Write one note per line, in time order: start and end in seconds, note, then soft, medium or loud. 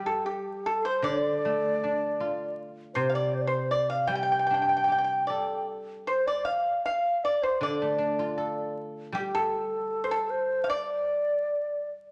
0.00 2.18 G3 soft
0.06 0.24 A4 medium
0.06 0.27 A4 medium
0.25 0.68 G4 medium
0.25 0.63 G4 medium
0.66 0.85 A4 medium
0.66 0.84 A4 medium
0.85 1.03 C5 medium
0.85 1.07 C5 medium
1.02 3.32 D3 soft
1.02 2.53 D5 medium
1.02 2.58 D5 medium
1.45 2.96 A3 soft
1.84 3.35 D4 soft
2.20 3.72 F4 soft
2.94 5.28 C3 medium
2.94 3.16 C5 medium
2.94 3.07 C5 medium
3.10 3.15 F5 medium
3.14 3.36 D5 medium
3.14 3.45 D5 medium
3.34 3.43 C5 medium
3.42 3.48 D5 medium
3.47 3.73 C5 medium
3.47 3.70 C5 medium
3.71 3.89 D5 medium
3.71 3.92 D5 medium
3.90 4.07 F5 medium
3.90 4.10 F5 medium
4.07 6.46 G3 soft
4.07 4.14 G5 medium
4.07 5.67 G5 medium
4.15 4.22 G5 medium
4.23 4.30 G5 medium
4.32 4.38 G5 soft
4.39 4.45 G5 medium
4.47 6.09 D4 soft
4.47 4.53 G5 soft
4.54 4.61 G5 medium
4.62 4.68 G5 soft
4.69 4.75 G5 soft
4.77 4.83 G5 soft
4.84 4.91 G5 medium
4.88 6.48 G4 soft
4.88 4.97 G5 soft
4.98 5.03 G5 medium
5.04 5.12 G5 soft
5.27 6.88 A4 soft
5.27 5.65 D5 soft
6.07 6.26 C5 medium
6.07 6.28 C5 medium
6.26 6.48 D5 medium
6.26 6.44 D5 medium
6.45 6.83 F5 medium
6.45 6.85 F5 medium
6.85 7.26 F5 medium
6.85 7.22 F5 medium
7.24 7.44 D5 medium
7.24 7.43 D5 medium
7.43 7.62 C5 medium
7.61 9.91 D3 soft
7.61 8.73 D5 medium
7.61 8.74 D5 medium
7.82 9.35 A3 soft
7.98 9.53 D4 soft
8.19 9.73 F4 soft
8.38 9.91 A4 soft
9.12 11.47 G3 soft
9.12 9.33 G4 medium
9.17 9.38 G4 medium
9.35 10.00 A4 medium
9.35 10.32 A4 medium
10.04 10.11 C5 soft
10.11 10.59 A4 medium
10.30 10.71 C5 medium
10.64 10.69 F5 medium
10.69 11.89 D5 medium
10.69 11.85 D5 medium